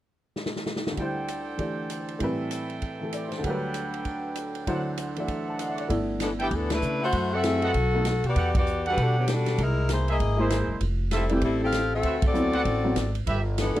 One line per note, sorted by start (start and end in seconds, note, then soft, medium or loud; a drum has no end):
0.36 snare medium
0.46 snare medium
0.56 snare medium
0.66 snare medium
0.76 snare medium
0.87 snare medium
0.91 2.17 D2 soft
0.91 2.19 D3 soft
0.96 2.20 G3 soft
0.96 2.22 E4 soft
0.96 2.20 A4 medium
0.96 2.21 C5 medium
0.96 2.21 D5 medium
0.96 2.20 G5 medium
0.96 kick soft
0.96 ride soft
1.02 2.23 C5 medium
1.28 hi-hat pedal soft
1.28 ride medium
1.57 2.18 E3 soft
1.57 2.20 A3 soft
1.57 2.21 G4 soft
1.57 2.21 D5 soft
1.57 kick soft
1.57 ride soft
1.90 hi-hat pedal soft
1.90 ride medium
2.08 ride soft
2.19 3.43 A2 soft
2.19 3.00 E3 soft
2.19 3.42 G3 soft
2.19 3.44 C4 soft
2.19 3.44 A4 medium
2.19 3.44 E5 medium
2.19 3.43 G5 medium
2.19 kick soft
2.19 ride medium
2.24 3.45 B4 medium
2.51 hi-hat pedal medium
2.51 ride medium
2.70 ride soft
2.82 kick soft
2.82 ride soft
2.99 3.44 E3 soft
2.99 3.44 A3 soft
2.99 3.20 E5 soft
2.99 3.18 E6 soft
3.05 3.46 A4 soft
3.12 3.37 D5 soft
3.12 3.31 D6 soft
3.12 hi-hat pedal soft
3.12 ride medium
3.24 3.39 C6 soft
3.28 3.50 C5 soft
3.28 snare soft
3.28 ride soft
3.35 3.50 A5 medium
3.39 4.64 D2 soft
3.39 4.65 D3 soft
3.43 4.66 G3 soft
3.43 4.68 A3 soft
3.43 4.67 D4 medium
3.43 4.66 A4 medium
3.43 4.67 B4 medium
3.43 4.66 F#5 medium
3.43 4.67 G5 medium
3.43 kick soft
3.43 ride medium
3.48 4.66 F#3 soft
3.48 4.70 B4 medium
3.74 hi-hat pedal medium
3.74 ride medium
3.94 ride soft
4.05 kick soft
4.05 ride soft
4.36 hi-hat pedal medium
4.36 ride medium
4.55 ride soft
4.67 5.90 D2 soft
4.67 5.90 D3 soft
4.67 5.90 F#3 soft
4.67 5.89 E4 soft
4.67 5.90 A4 medium
4.67 5.16 C5 medium
4.67 5.91 C5 medium
4.67 5.90 D5 medium
4.67 5.90 F#5 medium
4.67 kick soft
4.67 ride medium
4.98 hi-hat pedal medium
4.98 ride medium
5.16 5.90 E3 soft
5.16 5.87 A3 soft
5.16 5.91 F#4 soft
5.16 5.90 C5 medium
5.16 5.78 D5 soft
5.16 5.90 E5 medium
5.16 ride soft
5.28 kick soft
5.28 ride soft
5.44 5.65 A5 soft
5.50 5.65 A5 soft
5.58 5.77 F#5 soft
5.58 5.82 C6 soft
5.58 hi-hat pedal medium
5.58 ride medium
5.69 5.85 E5 soft
5.74 5.95 D6 soft
5.78 5.95 D5 soft
5.78 ride soft
5.89 6.48 G1 medium
5.89 6.74 A3 medium
5.89 6.75 B3 medium
5.89 6.75 D4 medium
5.89 6.75 E4 medium
5.89 kick soft
5.89 ride medium
6.20 6.30 E3 medium
6.20 6.30 B3 medium
6.20 6.30 D4 medium
6.20 6.30 A4 medium
6.20 snare medium
6.20 hi-hat pedal medium
6.20 ride medium
6.39 6.51 E3 medium
6.39 6.51 B3 medium
6.39 6.51 D4 medium
6.39 6.51 G4 medium
6.39 6.47 A4 medium
6.39 6.47 B4 medium
6.39 6.47 E5 medium
6.39 6.47 G5 loud
6.39 ride soft
6.51 6.80 D2 medium
6.51 6.71 E3 medium
6.51 6.71 B3 medium
6.51 6.71 D4 medium
6.51 6.71 A4 medium
6.51 kick soft
6.51 ride soft
6.70 7.02 A3 medium
6.70 7.02 D4 medium
6.70 7.02 E4 medium
6.70 7.02 B4 medium
6.70 snare medium
6.70 ride medium
6.82 7.11 C#3 medium
6.82 hi-hat pedal medium
7.02 7.31 A3 medium
7.02 7.31 E4 medium
7.02 7.31 F#4 medium
7.02 7.32 A4 medium
7.02 7.31 C5 medium
7.02 7.31 E5 medium
7.02 7.31 F#5 medium
7.12 7.71 F#2 medium
7.12 kick soft
7.12 ride medium
7.32 7.75 C4 medium
7.32 8.25 F#4 medium
7.32 7.40 A4 medium
7.32 8.25 A4 loud
7.32 7.40 C5 medium
7.32 7.40 E5 medium
7.32 7.75 E5 loud
7.32 7.40 F#5 medium
7.43 7.60 A3 soft
7.43 7.61 C4 soft
7.43 7.61 E4 soft
7.43 7.61 G#4 medium
7.43 snare medium
7.43 hi-hat pedal medium
7.43 ride medium
7.62 7.71 A4 loud
7.62 7.71 B4 medium
7.62 7.71 D#5 medium
7.62 7.71 F#5 loud
7.62 ride soft
7.74 8.20 B1 medium
7.74 kick soft
7.74 ride medium
7.94 8.04 A3 medium
7.94 8.05 B3 soft
7.94 8.05 D#4 soft
7.94 8.05 A4 medium
8.05 snare medium
8.05 hi-hat pedal medium
8.05 ride medium
8.24 8.35 B2 medium
8.24 8.56 B3 medium
8.24 8.55 F#4 medium
8.24 8.56 G4 medium
8.24 8.56 D5 medium
8.24 ride soft
8.36 8.94 E2 medium
8.36 8.49 G4 medium
8.36 8.49 A4 medium
8.36 8.49 D5 medium
8.36 8.49 F#5 medium
8.36 kick soft
8.36 ride medium
8.55 8.84 B3 medium
8.55 8.84 F#4 medium
8.55 8.84 G4 medium
8.55 8.84 D5 medium
8.55 kick medium
8.55 ride medium
8.66 hi-hat pedal soft
8.85 8.99 G3 medium
8.85 8.99 D4 medium
8.85 8.99 F#4 medium
8.85 9.26 G4 medium
8.85 9.25 A4 medium
8.85 8.99 B4 medium
8.85 9.26 D5 medium
8.85 9.25 F#5 loud
8.85 ride soft
8.97 9.55 B2 medium
8.97 9.17 G3 medium
8.97 9.17 D4 medium
8.97 9.18 F#4 medium
8.97 9.17 A4 medium
8.97 kick soft
8.97 ride medium
9.18 9.28 D3 medium
9.18 9.28 F#3 medium
9.18 9.28 B3 medium
9.18 9.29 G4 medium
9.28 9.60 D4 medium
9.28 snare medium
9.28 hi-hat pedal soft
9.28 ride medium
9.32 9.60 G3 medium
9.32 9.60 F#4 medium
9.32 9.60 A4 medium
9.46 snare soft
9.46 ride soft
9.58 10.16 C2 medium
9.58 9.90 E4 medium
9.58 kick soft
9.58 ride medium
9.62 9.91 G#3 medium
9.62 9.91 D#4 medium
9.62 9.91 A#4 medium
9.89 10.08 A#3 medium
9.89 10.08 E4 medium
9.89 10.08 G#4 medium
9.89 10.08 C5 medium
9.89 snare medium
9.89 hi-hat pedal medium
9.89 ride medium
10.08 10.66 A#3 medium
10.08 10.66 E4 medium
10.08 10.16 G#4 medium
10.08 10.66 G#4 medium
10.08 10.16 A#4 medium
10.08 10.16 C5 medium
10.08 10.66 D#5 medium
10.08 10.16 E5 medium
10.08 ride soft
10.19 10.66 G#1 medium
10.19 kick soft
10.19 ride soft
10.37 10.78 G#3 soft
10.37 10.78 A#3 soft
10.37 10.79 E4 medium
10.37 10.79 G#4 medium
10.37 10.79 A#4 medium
10.37 10.79 C5 medium
10.37 10.79 D#5 soft
10.50 snare medium
10.50 hi-hat pedal medium
10.50 ride medium
10.68 10.79 F#1 medium
10.80 11.39 F1 medium
10.80 kick soft
10.80 ride medium
11.11 11.30 G3 medium
11.11 11.30 C4 medium
11.11 11.30 E4 medium
11.11 11.24 F4 medium
11.11 11.24 G4 medium
11.11 11.24 A4 medium
11.11 11.30 A4 medium
11.11 11.24 E5 medium
11.11 snare medium
11.11 hi-hat pedal medium
11.11 ride medium
11.29 11.43 E3 medium
11.29 11.70 G3 medium
11.29 11.71 A3 medium
11.29 11.43 A3 medium
11.29 11.71 C4 medium
11.29 11.43 C4 medium
11.29 11.71 E4 medium
11.29 11.43 G4 medium
11.29 ride soft
11.41 12.00 A1 medium
11.41 11.61 G3 medium
11.41 11.61 C4 medium
11.41 11.61 E4 medium
11.41 11.61 A4 medium
11.41 kick soft
11.41 ride medium
11.63 11.91 C4 medium
11.63 11.91 G4 medium
11.63 11.91 A4 medium
11.63 11.91 F5 loud
11.72 snare medium
11.72 hi-hat pedal medium
11.72 ride medium
11.94 12.22 C4 medium
11.94 12.22 F#4 medium
11.94 12.22 A4 medium
11.94 12.22 E5 medium
12.03 12.62 D2 medium
12.03 12.17 F#4 medium
12.03 12.17 B4 medium
12.03 12.16 C5 medium
12.03 12.17 E5 medium
12.03 kick soft
12.03 ride medium
12.22 13.16 C4 medium
12.22 13.16 F#4 medium
12.22 13.16 A4 medium
12.22 13.16 D5 medium
12.22 kick medium
12.22 ride medium
12.33 12.51 F#3 medium
12.33 12.51 B3 soft
12.33 12.52 C4 soft
12.33 12.52 E4 medium
12.33 hi-hat pedal medium
12.53 12.61 F#4 medium
12.53 12.61 B4 medium
12.53 12.61 C5 medium
12.53 12.61 F#5 medium
12.53 ride soft
12.65 12.94 A1 medium
12.65 kick soft
12.65 ride medium
12.84 12.95 F#3 medium
12.84 12.95 B3 soft
12.84 12.95 C4 soft
12.84 12.95 F#4 medium
12.96 13.24 G#1 medium
12.96 snare medium
12.96 hi-hat pedal medium
12.96 ride medium
13.15 ride soft
13.27 13.73 G1 medium
13.27 13.40 G4 medium
13.27 13.40 A4 medium
13.27 13.40 B4 medium
13.27 13.40 E5 medium
13.27 kick soft
13.27 ride medium
13.58 13.77 E3 medium
13.58 13.76 B3 medium
13.58 13.77 D4 medium
13.58 13.77 A4 medium
13.58 snare medium
13.58 hi-hat pedal soft
13.58 ride medium
13.75 13.80 A3 medium
13.75 13.80 B3 medium
13.75 13.80 D4 medium
13.75 muted upright bass stroke soft
13.75 ride soft